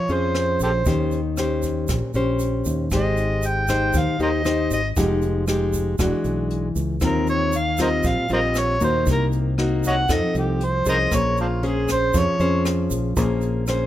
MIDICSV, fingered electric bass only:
0, 0, Header, 1, 2, 480
1, 0, Start_track
1, 0, Tempo, 512821
1, 807, Time_signature, 4, 2, 24, 8
1, 12978, End_track
2, 0, Start_track
2, 0, Title_t, "Fingered electric bass"
2, 0, Program_c, 0, 33
2, 84, Note_on_c, 0, 41, 78
2, 532, Note_off_c, 0, 41, 0
2, 567, Note_on_c, 0, 34, 82
2, 790, Note_off_c, 0, 34, 0
2, 807, Note_on_c, 0, 39, 102
2, 1730, Note_off_c, 0, 39, 0
2, 1770, Note_on_c, 0, 34, 94
2, 1880, Note_off_c, 0, 34, 0
2, 2004, Note_on_c, 0, 34, 83
2, 2452, Note_off_c, 0, 34, 0
2, 2492, Note_on_c, 0, 39, 87
2, 2713, Note_off_c, 0, 39, 0
2, 2729, Note_on_c, 0, 32, 99
2, 3651, Note_off_c, 0, 32, 0
2, 3689, Note_on_c, 0, 39, 94
2, 3800, Note_off_c, 0, 39, 0
2, 3925, Note_on_c, 0, 39, 80
2, 4373, Note_off_c, 0, 39, 0
2, 4407, Note_on_c, 0, 32, 80
2, 4631, Note_off_c, 0, 32, 0
2, 4648, Note_on_c, 0, 29, 101
2, 5570, Note_off_c, 0, 29, 0
2, 5605, Note_on_c, 0, 28, 95
2, 5718, Note_off_c, 0, 28, 0
2, 5845, Note_on_c, 0, 35, 77
2, 6293, Note_off_c, 0, 35, 0
2, 6325, Note_on_c, 0, 37, 80
2, 6549, Note_off_c, 0, 37, 0
2, 6565, Note_on_c, 0, 39, 101
2, 7488, Note_off_c, 0, 39, 0
2, 7528, Note_on_c, 0, 34, 93
2, 7639, Note_off_c, 0, 34, 0
2, 7768, Note_on_c, 0, 34, 79
2, 8214, Note_off_c, 0, 34, 0
2, 8247, Note_on_c, 0, 39, 81
2, 8470, Note_off_c, 0, 39, 0
2, 8485, Note_on_c, 0, 36, 97
2, 9408, Note_off_c, 0, 36, 0
2, 9445, Note_on_c, 0, 41, 94
2, 9557, Note_off_c, 0, 41, 0
2, 9686, Note_on_c, 0, 36, 86
2, 10132, Note_off_c, 0, 36, 0
2, 10166, Note_on_c, 0, 36, 85
2, 10389, Note_off_c, 0, 36, 0
2, 10407, Note_on_c, 0, 34, 98
2, 11328, Note_off_c, 0, 34, 0
2, 11365, Note_on_c, 0, 41, 98
2, 11477, Note_off_c, 0, 41, 0
2, 11602, Note_on_c, 0, 41, 86
2, 12049, Note_off_c, 0, 41, 0
2, 12082, Note_on_c, 0, 34, 81
2, 12306, Note_off_c, 0, 34, 0
2, 12324, Note_on_c, 0, 34, 105
2, 12978, Note_off_c, 0, 34, 0
2, 12978, End_track
0, 0, End_of_file